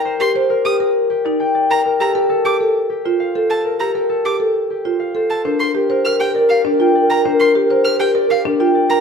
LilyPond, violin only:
\new Staff \with { instrumentName = "Violin" } { \time 3/4 \key g \minor \tempo 4 = 100 r16 c'''16 r8 ees'''16 r4. bes''16 | r16 bes''16 r8 d'''16 r4. a''16 | r16 bes''16 r8 d'''16 r4. a''16 | \key g \phrygian r16 c'''16 r8 f'''16 g''16 r16 f''16 r8. bes''16 |
r16 c'''16 r8 f'''16 g''16 r16 f''16 r8. bes''16 | }